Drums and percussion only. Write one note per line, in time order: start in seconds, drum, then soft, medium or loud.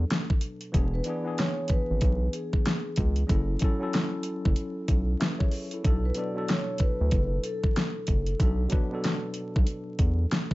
0.10 snare loud
0.10 closed hi-hat medium
0.30 kick medium
0.41 closed hi-hat medium
0.61 closed hi-hat medium
0.74 kick loud
0.74 closed hi-hat medium
1.04 closed hi-hat medium
1.38 snare loud
1.38 closed hi-hat medium
1.68 kick medium
1.68 closed hi-hat medium
2.01 kick loud
2.01 closed hi-hat medium
2.33 closed hi-hat medium
2.53 kick medium
2.66 snare loud
2.66 closed hi-hat medium
2.96 kick medium
2.96 closed hi-hat medium
3.16 closed hi-hat medium
3.29 kick loud
3.29 closed hi-hat medium
3.59 kick loud
3.59 closed hi-hat medium
3.93 snare loud
3.93 closed hi-hat medium
4.23 closed hi-hat medium
4.45 kick loud
4.56 closed hi-hat medium
4.88 kick medium
4.88 closed hi-hat medium
5.21 snare loud
5.21 closed hi-hat medium
5.40 kick medium
5.51 open hi-hat medium
5.71 closed hi-hat medium
5.84 kick loud
5.84 closed hi-hat medium
6.14 closed hi-hat medium
6.48 snare loud
6.48 closed hi-hat medium
6.78 kick medium
6.78 closed hi-hat medium
7.11 kick medium
7.11 closed hi-hat medium
7.43 closed hi-hat medium
7.63 kick medium
7.76 snare loud
7.76 closed hi-hat medium
8.07 kick medium
8.07 closed hi-hat medium
8.27 closed hi-hat medium
8.40 kick loud
8.40 closed hi-hat medium
8.70 kick loud
8.70 closed hi-hat medium
9.04 snare loud
9.04 closed hi-hat medium
9.34 closed hi-hat medium
9.56 kick loud
9.67 closed hi-hat medium
9.99 kick medium
9.99 closed hi-hat medium
10.31 snare loud
10.31 closed hi-hat medium
10.51 kick medium